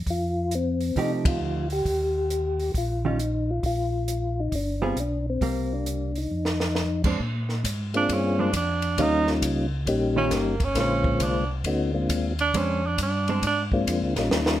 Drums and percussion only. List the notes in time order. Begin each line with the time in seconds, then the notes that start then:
0.07 kick, open hi-hat
0.51 closed hi-hat
0.81 open hi-hat
0.96 kick, open hi-hat
1.25 kick, ride
1.70 open hi-hat
1.85 kick, open hi-hat
2.30 closed hi-hat
2.60 open hi-hat
2.74 kick, open hi-hat
3.19 closed hi-hat
3.63 kick, open hi-hat
4.08 closed hi-hat
4.52 kick, open hi-hat
4.97 closed hi-hat
5.41 kick, open hi-hat
5.86 closed hi-hat
6.16 open hi-hat
6.45 snare
6.60 snare
6.75 snare
7.04 kick, crash
7.20 kick
7.49 snare
7.64 kick, hi-hat pedal, ride
7.94 ride
8.09 kick, ride
8.53 kick, hi-hat pedal, ride
8.82 ride
8.98 kick, ride
9.27 snare
9.42 kick, hi-hat pedal, ride
9.86 kick, ride
10.31 kick, snare, hi-hat pedal, ride
10.60 kick, ride
10.75 kick, snare, ride
11.04 kick
11.20 kick, hi-hat pedal, ride
11.64 kick, ride
12.09 kick, hi-hat pedal, ride
12.39 ride
12.54 kick, ride
12.98 kick, hi-hat pedal, ride
13.28 ride
13.43 kick, ride
13.72 kick
13.87 kick, hi-hat pedal, ride
14.16 snare, ride
14.31 snare
14.46 snare